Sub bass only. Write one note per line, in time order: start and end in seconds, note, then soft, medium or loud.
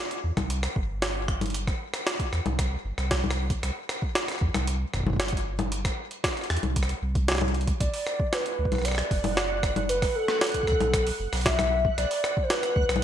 0.24 0.32 E2 medium
0.37 0.68 C2 medium
0.76 1.72 G1 medium
2.33 2.40 E2 medium
2.46 2.76 C2 medium
2.85 2.93 G1 medium
2.98 3.55 C2 medium
3.63 3.71 C2 loud
4.41 4.49 E2 medium
4.54 4.85 C2 medium
4.94 5.90 G1 medium
6.50 6.58 E2 medium
6.63 6.94 C2 medium
7.02 7.72 C2 medium
7.80 7.88 B1 loud
8.59 8.67 D2 medium
8.72 9.03 B1 medium
9.11 10.07 F#1 medium
10.67 10.75 D2 medium
10.80 11.11 B1 medium
11.20 11.27 F#1 medium
11.33 11.90 B1 medium
11.98 12.06 B1 loud
12.76 12.84 D2 loud
12.89 13.04 B1 medium